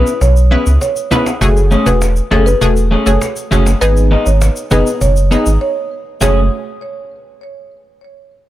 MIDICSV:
0, 0, Header, 1, 7, 480
1, 0, Start_track
1, 0, Tempo, 600000
1, 1131, Time_signature, 4, 2, 24, 8
1, 6792, End_track
2, 0, Start_track
2, 0, Title_t, "Marimba"
2, 0, Program_c, 0, 12
2, 171, Note_on_c, 0, 73, 92
2, 509, Note_off_c, 0, 73, 0
2, 651, Note_on_c, 0, 73, 81
2, 989, Note_off_c, 0, 73, 0
2, 1490, Note_on_c, 0, 71, 76
2, 1584, Note_off_c, 0, 71, 0
2, 1851, Note_on_c, 0, 69, 87
2, 1944, Note_off_c, 0, 69, 0
2, 1970, Note_on_c, 0, 71, 88
2, 2064, Note_off_c, 0, 71, 0
2, 2091, Note_on_c, 0, 69, 88
2, 2184, Note_off_c, 0, 69, 0
2, 2451, Note_on_c, 0, 73, 75
2, 2544, Note_off_c, 0, 73, 0
2, 3051, Note_on_c, 0, 71, 106
2, 3238, Note_off_c, 0, 71, 0
2, 3411, Note_on_c, 0, 73, 73
2, 3505, Note_off_c, 0, 73, 0
2, 3771, Note_on_c, 0, 71, 90
2, 3865, Note_off_c, 0, 71, 0
2, 4010, Note_on_c, 0, 73, 92
2, 4349, Note_off_c, 0, 73, 0
2, 4490, Note_on_c, 0, 73, 83
2, 4829, Note_off_c, 0, 73, 0
2, 4970, Note_on_c, 0, 73, 86
2, 5194, Note_off_c, 0, 73, 0
2, 6792, End_track
3, 0, Start_track
3, 0, Title_t, "Synth pluck"
3, 0, Program_c, 1, 84
3, 0, Note_on_c, 1, 61, 77
3, 0, Note_on_c, 1, 64, 68
3, 0, Note_on_c, 1, 71, 82
3, 151, Note_off_c, 1, 61, 0
3, 152, Note_off_c, 1, 64, 0
3, 153, Note_off_c, 1, 71, 0
3, 409, Note_on_c, 1, 61, 81
3, 412, Note_on_c, 1, 64, 76
3, 414, Note_on_c, 1, 71, 86
3, 511, Note_off_c, 1, 61, 0
3, 512, Note_off_c, 1, 64, 0
3, 513, Note_off_c, 1, 71, 0
3, 890, Note_on_c, 1, 61, 75
3, 893, Note_on_c, 1, 64, 69
3, 895, Note_on_c, 1, 71, 90
3, 991, Note_off_c, 1, 61, 0
3, 993, Note_off_c, 1, 64, 0
3, 994, Note_off_c, 1, 71, 0
3, 1128, Note_on_c, 1, 57, 91
3, 1131, Note_on_c, 1, 66, 85
3, 1133, Note_on_c, 1, 68, 107
3, 1461, Note_off_c, 1, 57, 0
3, 1462, Note_off_c, 1, 66, 0
3, 1463, Note_off_c, 1, 68, 0
3, 1489, Note_on_c, 1, 57, 79
3, 1492, Note_on_c, 1, 66, 68
3, 1494, Note_on_c, 1, 68, 80
3, 1591, Note_off_c, 1, 57, 0
3, 1592, Note_off_c, 1, 66, 0
3, 1593, Note_off_c, 1, 68, 0
3, 1850, Note_on_c, 1, 57, 77
3, 1852, Note_on_c, 1, 66, 67
3, 1855, Note_on_c, 1, 68, 81
3, 1951, Note_off_c, 1, 57, 0
3, 1952, Note_off_c, 1, 66, 0
3, 1954, Note_off_c, 1, 68, 0
3, 2089, Note_on_c, 1, 57, 101
3, 2092, Note_on_c, 1, 66, 86
3, 2094, Note_on_c, 1, 68, 107
3, 2191, Note_off_c, 1, 57, 0
3, 2192, Note_off_c, 1, 66, 0
3, 2193, Note_off_c, 1, 68, 0
3, 2449, Note_on_c, 1, 57, 79
3, 2452, Note_on_c, 1, 66, 73
3, 2454, Note_on_c, 1, 68, 87
3, 2551, Note_off_c, 1, 57, 0
3, 2552, Note_off_c, 1, 66, 0
3, 2553, Note_off_c, 1, 68, 0
3, 2811, Note_on_c, 1, 57, 79
3, 2814, Note_on_c, 1, 66, 71
3, 2816, Note_on_c, 1, 68, 84
3, 2912, Note_off_c, 1, 57, 0
3, 2913, Note_off_c, 1, 66, 0
3, 2914, Note_off_c, 1, 68, 0
3, 3049, Note_on_c, 1, 59, 96
3, 3052, Note_on_c, 1, 63, 83
3, 3055, Note_on_c, 1, 68, 102
3, 3713, Note_off_c, 1, 59, 0
3, 3714, Note_off_c, 1, 63, 0
3, 3715, Note_off_c, 1, 68, 0
3, 3769, Note_on_c, 1, 59, 76
3, 3771, Note_on_c, 1, 63, 70
3, 3774, Note_on_c, 1, 68, 84
3, 3991, Note_off_c, 1, 59, 0
3, 3992, Note_off_c, 1, 63, 0
3, 3993, Note_off_c, 1, 68, 0
3, 4249, Note_on_c, 1, 59, 80
3, 4252, Note_on_c, 1, 63, 75
3, 4254, Note_on_c, 1, 68, 94
3, 4350, Note_off_c, 1, 59, 0
3, 4352, Note_off_c, 1, 63, 0
3, 4353, Note_off_c, 1, 68, 0
3, 4968, Note_on_c, 1, 57, 82
3, 4972, Note_on_c, 1, 66, 78
3, 4976, Note_on_c, 1, 68, 93
3, 5148, Note_off_c, 1, 57, 0
3, 5150, Note_off_c, 1, 66, 0
3, 5152, Note_off_c, 1, 68, 0
3, 6792, End_track
4, 0, Start_track
4, 0, Title_t, "Clean electric guitar"
4, 0, Program_c, 2, 27
4, 408, Note_on_c, 2, 59, 91
4, 413, Note_on_c, 2, 64, 99
4, 417, Note_on_c, 2, 68, 110
4, 535, Note_off_c, 2, 59, 0
4, 538, Note_off_c, 2, 64, 0
4, 540, Note_off_c, 2, 68, 0
4, 888, Note_on_c, 2, 59, 92
4, 894, Note_on_c, 2, 64, 88
4, 898, Note_on_c, 2, 68, 104
4, 1015, Note_off_c, 2, 59, 0
4, 1018, Note_off_c, 2, 64, 0
4, 1020, Note_off_c, 2, 68, 0
4, 1368, Note_on_c, 2, 57, 85
4, 1373, Note_on_c, 2, 61, 89
4, 1377, Note_on_c, 2, 68, 90
4, 1495, Note_off_c, 2, 57, 0
4, 1497, Note_off_c, 2, 61, 0
4, 1500, Note_off_c, 2, 68, 0
4, 1848, Note_on_c, 2, 57, 79
4, 1854, Note_on_c, 2, 61, 91
4, 1859, Note_on_c, 2, 68, 88
4, 1975, Note_off_c, 2, 57, 0
4, 1978, Note_off_c, 2, 61, 0
4, 1980, Note_off_c, 2, 68, 0
4, 2328, Note_on_c, 2, 57, 74
4, 2333, Note_on_c, 2, 61, 87
4, 2338, Note_on_c, 2, 68, 93
4, 2455, Note_off_c, 2, 57, 0
4, 2458, Note_off_c, 2, 61, 0
4, 2460, Note_off_c, 2, 68, 0
4, 2808, Note_on_c, 2, 57, 86
4, 2814, Note_on_c, 2, 61, 94
4, 2818, Note_on_c, 2, 68, 93
4, 2935, Note_off_c, 2, 57, 0
4, 2938, Note_off_c, 2, 61, 0
4, 2940, Note_off_c, 2, 68, 0
4, 3288, Note_on_c, 2, 59, 79
4, 3293, Note_on_c, 2, 63, 91
4, 3298, Note_on_c, 2, 68, 94
4, 3415, Note_off_c, 2, 59, 0
4, 3418, Note_off_c, 2, 63, 0
4, 3420, Note_off_c, 2, 68, 0
4, 3767, Note_on_c, 2, 59, 81
4, 3773, Note_on_c, 2, 63, 87
4, 3777, Note_on_c, 2, 68, 87
4, 3895, Note_off_c, 2, 59, 0
4, 3897, Note_off_c, 2, 63, 0
4, 3900, Note_off_c, 2, 68, 0
4, 4248, Note_on_c, 2, 59, 79
4, 4252, Note_on_c, 2, 63, 88
4, 4257, Note_on_c, 2, 68, 84
4, 4375, Note_off_c, 2, 59, 0
4, 4377, Note_off_c, 2, 63, 0
4, 4379, Note_off_c, 2, 68, 0
4, 4967, Note_on_c, 2, 57, 83
4, 4974, Note_on_c, 2, 61, 91
4, 4979, Note_on_c, 2, 68, 99
4, 5113, Note_off_c, 2, 57, 0
4, 5116, Note_off_c, 2, 61, 0
4, 5119, Note_off_c, 2, 68, 0
4, 6792, End_track
5, 0, Start_track
5, 0, Title_t, "Sub bass"
5, 0, Program_c, 3, 38
5, 172, Note_on_c, 3, 35, 100
5, 448, Note_off_c, 3, 35, 0
5, 532, Note_on_c, 3, 37, 91
5, 624, Note_off_c, 3, 37, 0
5, 1130, Note_on_c, 3, 30, 99
5, 1407, Note_off_c, 3, 30, 0
5, 1492, Note_on_c, 3, 28, 88
5, 1768, Note_off_c, 3, 28, 0
5, 1852, Note_on_c, 3, 30, 96
5, 2036, Note_off_c, 3, 30, 0
5, 2092, Note_on_c, 3, 28, 89
5, 2368, Note_off_c, 3, 28, 0
5, 2451, Note_on_c, 3, 30, 85
5, 2543, Note_off_c, 3, 30, 0
5, 2813, Note_on_c, 3, 30, 92
5, 2997, Note_off_c, 3, 30, 0
5, 3052, Note_on_c, 3, 32, 103
5, 3328, Note_off_c, 3, 32, 0
5, 3410, Note_on_c, 3, 32, 97
5, 3595, Note_off_c, 3, 32, 0
5, 3772, Note_on_c, 3, 30, 92
5, 3864, Note_off_c, 3, 30, 0
5, 4012, Note_on_c, 3, 30, 98
5, 4288, Note_off_c, 3, 30, 0
5, 4370, Note_on_c, 3, 32, 92
5, 4463, Note_off_c, 3, 32, 0
5, 4972, Note_on_c, 3, 30, 98
5, 5195, Note_off_c, 3, 30, 0
5, 6792, End_track
6, 0, Start_track
6, 0, Title_t, "Cajon"
6, 51, Note_on_c, 9, 38, 46
6, 131, Note_off_c, 9, 38, 0
6, 172, Note_on_c, 9, 36, 93
6, 252, Note_off_c, 9, 36, 0
6, 293, Note_on_c, 9, 38, 29
6, 373, Note_off_c, 9, 38, 0
6, 652, Note_on_c, 9, 38, 93
6, 732, Note_off_c, 9, 38, 0
6, 769, Note_on_c, 9, 38, 33
6, 849, Note_off_c, 9, 38, 0
6, 891, Note_on_c, 9, 38, 97
6, 892, Note_on_c, 9, 36, 93
6, 971, Note_off_c, 9, 38, 0
6, 972, Note_off_c, 9, 36, 0
6, 1011, Note_on_c, 9, 38, 93
6, 1091, Note_off_c, 9, 38, 0
6, 1130, Note_on_c, 9, 36, 119
6, 1210, Note_off_c, 9, 36, 0
6, 1251, Note_on_c, 9, 38, 32
6, 1331, Note_off_c, 9, 38, 0
6, 1492, Note_on_c, 9, 36, 96
6, 1572, Note_off_c, 9, 36, 0
6, 1613, Note_on_c, 9, 38, 96
6, 1693, Note_off_c, 9, 38, 0
6, 1732, Note_on_c, 9, 38, 29
6, 1812, Note_off_c, 9, 38, 0
6, 1853, Note_on_c, 9, 36, 103
6, 1853, Note_on_c, 9, 38, 90
6, 1933, Note_off_c, 9, 36, 0
6, 1933, Note_off_c, 9, 38, 0
6, 1974, Note_on_c, 9, 38, 45
6, 2054, Note_off_c, 9, 38, 0
6, 2092, Note_on_c, 9, 36, 94
6, 2172, Note_off_c, 9, 36, 0
6, 2214, Note_on_c, 9, 38, 29
6, 2294, Note_off_c, 9, 38, 0
6, 2330, Note_on_c, 9, 38, 39
6, 2410, Note_off_c, 9, 38, 0
6, 2452, Note_on_c, 9, 38, 43
6, 2532, Note_off_c, 9, 38, 0
6, 2572, Note_on_c, 9, 38, 96
6, 2652, Note_off_c, 9, 38, 0
6, 2689, Note_on_c, 9, 38, 34
6, 2769, Note_off_c, 9, 38, 0
6, 2812, Note_on_c, 9, 36, 93
6, 2892, Note_off_c, 9, 36, 0
6, 2932, Note_on_c, 9, 38, 94
6, 3012, Note_off_c, 9, 38, 0
6, 3051, Note_on_c, 9, 38, 38
6, 3131, Note_off_c, 9, 38, 0
6, 3171, Note_on_c, 9, 38, 33
6, 3251, Note_off_c, 9, 38, 0
6, 3293, Note_on_c, 9, 38, 40
6, 3373, Note_off_c, 9, 38, 0
6, 3532, Note_on_c, 9, 38, 98
6, 3612, Note_off_c, 9, 38, 0
6, 3651, Note_on_c, 9, 38, 31
6, 3731, Note_off_c, 9, 38, 0
6, 3772, Note_on_c, 9, 36, 100
6, 3772, Note_on_c, 9, 38, 88
6, 3852, Note_off_c, 9, 36, 0
6, 3852, Note_off_c, 9, 38, 0
6, 3892, Note_on_c, 9, 38, 48
6, 3972, Note_off_c, 9, 38, 0
6, 4011, Note_on_c, 9, 36, 96
6, 4091, Note_off_c, 9, 36, 0
6, 4133, Note_on_c, 9, 38, 28
6, 4213, Note_off_c, 9, 38, 0
6, 4971, Note_on_c, 9, 36, 107
6, 5051, Note_off_c, 9, 36, 0
6, 6792, End_track
7, 0, Start_track
7, 0, Title_t, "Drums"
7, 54, Note_on_c, 9, 82, 64
7, 134, Note_off_c, 9, 82, 0
7, 172, Note_on_c, 9, 82, 68
7, 252, Note_off_c, 9, 82, 0
7, 292, Note_on_c, 9, 82, 49
7, 372, Note_off_c, 9, 82, 0
7, 531, Note_on_c, 9, 82, 70
7, 611, Note_off_c, 9, 82, 0
7, 652, Note_on_c, 9, 82, 70
7, 732, Note_off_c, 9, 82, 0
7, 770, Note_on_c, 9, 82, 59
7, 850, Note_off_c, 9, 82, 0
7, 892, Note_on_c, 9, 65, 68
7, 892, Note_on_c, 9, 82, 48
7, 972, Note_off_c, 9, 65, 0
7, 972, Note_off_c, 9, 82, 0
7, 1013, Note_on_c, 9, 65, 69
7, 1013, Note_on_c, 9, 82, 68
7, 1093, Note_off_c, 9, 65, 0
7, 1093, Note_off_c, 9, 82, 0
7, 1134, Note_on_c, 9, 82, 78
7, 1214, Note_off_c, 9, 82, 0
7, 1254, Note_on_c, 9, 82, 47
7, 1334, Note_off_c, 9, 82, 0
7, 1370, Note_on_c, 9, 82, 49
7, 1450, Note_off_c, 9, 82, 0
7, 1491, Note_on_c, 9, 82, 74
7, 1571, Note_off_c, 9, 82, 0
7, 1613, Note_on_c, 9, 82, 75
7, 1693, Note_off_c, 9, 82, 0
7, 1730, Note_on_c, 9, 82, 52
7, 1810, Note_off_c, 9, 82, 0
7, 1974, Note_on_c, 9, 82, 61
7, 2054, Note_off_c, 9, 82, 0
7, 2093, Note_on_c, 9, 82, 66
7, 2173, Note_off_c, 9, 82, 0
7, 2213, Note_on_c, 9, 82, 49
7, 2293, Note_off_c, 9, 82, 0
7, 2452, Note_on_c, 9, 82, 74
7, 2532, Note_off_c, 9, 82, 0
7, 2574, Note_on_c, 9, 82, 68
7, 2654, Note_off_c, 9, 82, 0
7, 2690, Note_on_c, 9, 82, 58
7, 2770, Note_off_c, 9, 82, 0
7, 2814, Note_on_c, 9, 82, 49
7, 2894, Note_off_c, 9, 82, 0
7, 2933, Note_on_c, 9, 82, 66
7, 3013, Note_off_c, 9, 82, 0
7, 3054, Note_on_c, 9, 82, 81
7, 3134, Note_off_c, 9, 82, 0
7, 3173, Note_on_c, 9, 82, 51
7, 3253, Note_off_c, 9, 82, 0
7, 3410, Note_on_c, 9, 82, 73
7, 3490, Note_off_c, 9, 82, 0
7, 3531, Note_on_c, 9, 82, 74
7, 3611, Note_off_c, 9, 82, 0
7, 3648, Note_on_c, 9, 82, 54
7, 3728, Note_off_c, 9, 82, 0
7, 3767, Note_on_c, 9, 82, 54
7, 3847, Note_off_c, 9, 82, 0
7, 3894, Note_on_c, 9, 82, 62
7, 3974, Note_off_c, 9, 82, 0
7, 4011, Note_on_c, 9, 82, 71
7, 4091, Note_off_c, 9, 82, 0
7, 4130, Note_on_c, 9, 82, 52
7, 4210, Note_off_c, 9, 82, 0
7, 4252, Note_on_c, 9, 82, 49
7, 4332, Note_off_c, 9, 82, 0
7, 4369, Note_on_c, 9, 82, 71
7, 4449, Note_off_c, 9, 82, 0
7, 4970, Note_on_c, 9, 82, 87
7, 5050, Note_off_c, 9, 82, 0
7, 6792, End_track
0, 0, End_of_file